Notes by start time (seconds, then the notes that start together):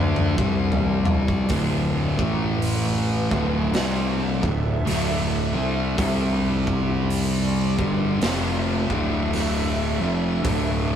Already playing: D2 D3 A3 D4 A4 E5
0.16 mid tom
0.37 C2 C3 G3 C4, kick
0.72 floor tom
1.05 floor tom
1.28 kick
1.49 D1 D2 A2 D3, kick, open hi-hat
2.18 A1 A2 E3 A3, kick
2.62 open hi-hat
3.31 D1 D2 A2 D3 D4 A4 E5, kick
3.73 C2 C3 G3 C4, snare, open hi-hat
4.43 D1 D2 A2, kick
4.86 D1 D2 A2 D3, snare, open hi-hat
5.55 C2 C3 G3 C4
5.97 C2 C3 G3 C4 G4 D5, kick, open hi-hat
6.67 kick
7.10 open hi-hat
7.78 G1 G2 D3 G3 D4 A4 E5, kick
8.21 F1 F2 C3 F3, snare, open hi-hat
8.90 D1 D2 A2 D3, kick
9.33 snare, open hi-hat
10.01 F1 F2 C3 F3
10.42 D1 D2 A2 D3, kick, open hi-hat